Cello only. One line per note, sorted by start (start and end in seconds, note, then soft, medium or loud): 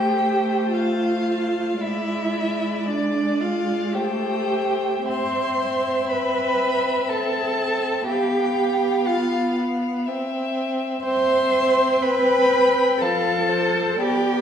0.00 0.72 G4 medium
0.73 1.82 F4 medium
1.80 2.90 E4 medium
2.88 3.42 D4 medium
3.41 3.94 F4 medium
3.93 5.07 G4 soft
5.07 6.11 C5 medium
6.10 7.12 B4 medium
7.10 8.07 A4 medium
8.08 9.09 G4 medium
9.07 9.57 F4 medium
11.04 12.03 C5 medium
12.02 13.01 B4 medium
13.01 14.02 A4 medium
14.01 14.41 G4 medium